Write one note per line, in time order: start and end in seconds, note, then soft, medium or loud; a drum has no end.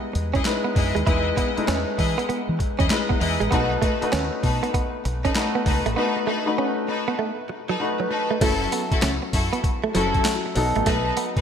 0.00 3.54 G3 medium
0.00 0.45 G#3 medium
0.00 0.45 D#4 medium
0.00 0.46 E4 medium
0.00 0.46 B4 medium
0.13 0.39 E2 medium
0.13 muted clean electric guitar stroke soft
0.13 closed hi-hat medium
0.34 0.40 C#4 medium
0.34 0.47 E4 medium
0.34 0.47 G#4 medium
0.34 0.47 D#5 medium
0.34 kick medium
0.34 closed hi-hat medium
0.45 1.00 G#3 medium
0.45 1.00 D#4 medium
0.45 1.00 E4 medium
0.45 1.00 B4 medium
0.45 snare loud
0.45 clap medium
0.45 closed hi-hat medium
0.65 0.71 B3 medium
0.75 0.92 F#2 medium
0.75 0.97 E4 medium
0.75 0.97 G#4 medium
0.75 0.97 D#5 medium
0.75 muted clean electric guitar stroke soft
0.75 kick medium
0.75 open hi-hat medium
0.95 1.05 D#2 medium
0.95 1.01 G#3 medium
0.95 closed hi-hat medium
1.06 1.31 E2 loud
1.06 1.48 G#3 medium
1.06 1.48 D#4 medium
1.06 1.27 E4 loud
1.06 1.48 E4 medium
1.06 1.18 E4 medium
1.06 1.27 G#4 medium
1.06 1.48 B4 loud
1.06 1.27 D#5 loud
1.06 kick loud
1.06 closed hi-hat medium
1.26 muted clean electric guitar stroke soft
1.36 1.48 B3 medium
1.36 1.58 E4 medium
1.36 1.58 G#4 medium
1.36 1.58 D#5 medium
1.36 kick medium
1.36 closed hi-hat medium
1.57 2.57 G#3 medium
1.57 2.57 D#4 medium
1.57 2.58 E4 medium
1.57 1.62 A4 medium
1.57 muted fingered electric bass stroke soft
1.57 closed hi-hat medium
1.65 1.84 E2 loud
1.65 1.79 C#4 medium
1.65 2.61 B4 loud
1.65 snare loud
1.65 clap medium
1.65 closed hi-hat medium
1.98 2.14 E3 medium
1.98 2.19 E4 medium
1.98 2.19 G#4 medium
1.98 2.19 D#5 medium
1.98 muted clean electric guitar stroke soft
1.98 kick medium
1.98 open hi-hat medium
2.18 2.24 B3 medium
2.18 closed hi-hat medium
2.29 2.40 B3 medium
2.29 muted fingered electric bass stroke soft
2.29 closed hi-hat medium
2.49 2.57 E3 medium
2.59 muted clean electric guitar stroke soft
2.59 kick medium
2.59 closed hi-hat medium
2.79 2.88 E2 medium
2.79 2.85 C#4 medium
2.79 2.92 E4 medium
2.79 2.92 G#4 medium
2.79 2.92 D#5 medium
2.79 kick medium
2.79 closed hi-hat medium
2.90 3.45 G#3 medium
2.90 3.45 D#4 medium
2.90 3.45 E4 medium
2.90 3.46 B4 medium
2.90 snare loud
2.90 clap medium
2.90 closed hi-hat medium
3.09 3.16 B3 medium
3.09 kick loud
3.20 3.37 E2 medium
3.20 3.41 E4 medium
3.20 3.42 G#4 medium
3.20 3.42 D#5 medium
3.20 muted clean electric guitar stroke soft
3.20 open hi-hat medium
3.40 3.50 A1 medium
3.40 3.47 G#3 medium
3.40 closed hi-hat medium
3.51 3.76 B1 loud
3.51 3.93 A3 medium
3.51 3.62 B3 medium
3.51 3.72 D#4 medium
3.51 3.93 D#4 medium
3.51 3.93 F#4 medium
3.51 3.72 A4 medium
3.51 3.73 B4 loud
3.51 3.93 B4 medium
3.51 kick loud
3.51 closed hi-hat medium
3.71 muted clean electric guitar stroke soft
3.81 3.93 A3 medium
3.81 4.03 D#4 medium
3.81 4.03 A4 medium
3.81 4.03 B4 medium
3.81 kick medium
3.81 closed hi-hat medium
4.02 5.02 A3 loud
4.02 5.02 D#4 medium
4.02 5.02 F#4 medium
4.02 5.03 B4 loud
4.02 muted fingered electric bass stroke soft
4.02 closed hi-hat medium
4.12 4.29 D#2 loud
4.12 4.23 C#4 medium
4.12 snare loud
4.12 clap medium
4.12 closed hi-hat medium
4.43 4.59 B2 loud
4.43 4.64 D#4 medium
4.43 4.64 A4 medium
4.43 4.64 B4 medium
4.43 muted clean electric guitar stroke soft
4.43 kick loud
4.43 open hi-hat medium
4.63 4.69 B3 medium
4.63 closed hi-hat medium
4.74 4.85 B3 medium
4.74 kick loud
4.74 closed hi-hat medium
5.05 5.29 B1 loud
5.05 muted clean electric guitar stroke soft
5.05 closed hi-hat medium
5.25 5.31 C#4 medium
5.25 5.37 D#4 medium
5.25 5.37 A4 medium
5.25 5.37 B4 medium
5.25 kick medium
5.25 closed hi-hat medium
5.35 5.90 A3 medium
5.35 5.90 D#4 medium
5.35 5.90 F#4 medium
5.35 5.91 B4 medium
5.35 snare loud
5.35 clap medium
5.35 closed hi-hat medium
5.55 5.61 B3 medium
5.65 5.82 C#2 medium
5.65 5.87 D#4 medium
5.65 5.87 A4 medium
5.65 5.87 B4 medium
5.65 muted clean electric guitar stroke soft
5.65 kick medium
5.65 open hi-hat medium
5.86 5.95 A1 medium
5.86 5.92 A3 medium
5.86 closed hi-hat medium
5.96 6.38 A3 medium
5.96 6.07 B3 medium
5.96 6.17 D#4 loud
5.96 6.38 D#4 medium
5.96 6.38 F#4 medium
5.96 6.17 A4 medium
5.96 6.18 B4 loud
5.96 6.38 B4 medium
6.17 muted clean electric guitar stroke soft
6.27 6.38 A3 medium
6.27 6.48 D#4 medium
6.27 6.48 A4 medium
6.27 6.48 B4 medium
6.46 7.47 A3 medium
6.46 7.47 D#4 medium
6.46 7.47 F#4 medium
6.46 7.47 B4 loud
6.58 6.69 C#4 medium
6.88 7.09 D#4 medium
6.88 7.09 A4 medium
6.88 7.09 B4 medium
6.88 muted clean electric guitar stroke soft
7.08 7.14 B3 medium
7.19 7.30 A3 medium
7.49 muted clean electric guitar stroke soft
7.69 7.75 F#3 medium
7.69 7.82 D#4 medium
7.69 7.82 A4 medium
7.69 7.82 B4 medium
7.80 8.35 A3 medium
7.80 8.35 D#4 medium
7.80 8.35 F#4 medium
7.80 8.35 B4 medium
8.00 8.06 F#3 medium
8.11 8.32 D#4 medium
8.11 8.32 A4 medium
8.11 8.32 B4 medium
8.11 muted clean electric guitar stroke soft
8.31 8.37 A3 medium
8.41 8.66 F#1 loud
8.41 9.48 F#3 medium
8.41 8.53 A3 medium
8.41 9.48 C#4 medium
8.41 8.62 E4 loud
8.41 9.49 E4 medium
8.41 8.62 F#4 medium
8.41 8.62 A4 loud
8.41 9.49 A4 loud
8.41 kick loud
8.41 closed hi-hat medium
8.41 crash medium
8.41 tambourine medium
8.72 8.83 B3 medium
8.72 closed hi-hat medium
8.72 tambourine medium
8.92 9.04 E4 medium
8.92 9.05 F#4 medium
8.92 9.05 A4 medium
8.92 muted fingered electric bass stroke soft
8.92 muted clean electric guitar stroke soft
8.92 kick loud
8.92 closed hi-hat medium
9.02 9.19 C#2 loud
9.02 9.14 C#4 medium
9.02 snare loud
9.02 clap medium
9.02 closed hi-hat medium
9.02 tambourine medium
9.23 muted clean electric guitar stroke soft
9.33 9.49 F#2 loud
9.33 9.54 E4 medium
9.33 9.54 F#4 medium
9.33 9.54 A4 medium
9.33 kick loud
9.33 open hi-hat medium
9.33 tambourine medium
9.53 9.59 B3 medium
9.53 closed hi-hat medium
9.64 muted clean electric guitar stroke soft
9.64 kick loud
9.64 closed hi-hat medium
9.84 9.90 A3 medium
9.94 10.19 F#1 medium
9.94 10.54 F#3 medium
9.94 10.06 F#3 medium
9.94 10.56 C#4 medium
9.94 10.15 E4 medium
9.94 10.56 E4 medium
9.94 10.16 F#4 medium
9.94 10.16 A4 medium
9.94 10.55 A4 loud
9.94 closed hi-hat medium
9.94 tambourine medium
10.14 kick medium
10.14 closed hi-hat medium
10.25 10.36 F#3 medium
10.25 snare loud
10.25 clap medium
10.25 closed hi-hat medium
10.25 tambourine medium
10.46 muted clean electric guitar stroke soft
10.55 10.72 B1 loud
10.55 11.41 F#3 medium
10.55 11.41 B3 medium
10.55 11.41 D#4 medium
10.55 11.41 A4 loud
10.55 open hi-hat medium
10.55 tambourine medium
10.76 10.85 A1 medium
10.76 10.82 A3 medium
10.76 closed hi-hat medium
10.86 11.10 B1 loud
10.86 10.98 A3 medium
10.86 11.07 D#4 medium
10.86 11.07 A4 medium
10.86 11.07 B4 loud
10.86 kick loud
10.86 closed hi-hat medium
10.86 tambourine medium
11.17 11.28 B3 medium
11.17 closed hi-hat medium
11.17 tambourine medium
11.37 11.41 D#4 medium
11.37 11.41 A4 medium
11.37 11.41 B4 medium
11.37 muted fingered electric bass stroke soft
11.37 muted clean electric guitar stroke soft
11.37 kick loud
11.37 closed hi-hat medium